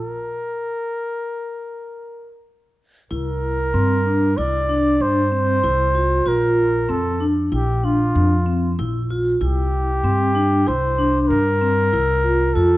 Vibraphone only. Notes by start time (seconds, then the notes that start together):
3.10 E4
3.74 C4
4.06 D4
4.38 E4
4.69 D4
5.31 C4
5.63 E4
5.95 F4
6.26 F4
6.89 C4
7.21 D4
7.52 E4
7.84 D4
8.46 C4
8.79 E4
9.10 F4
9.41 E4
10.04 C4
10.35 D4
10.67 E4
10.98 D4
11.61 C4
11.92 E4
12.24 F4
12.55 F4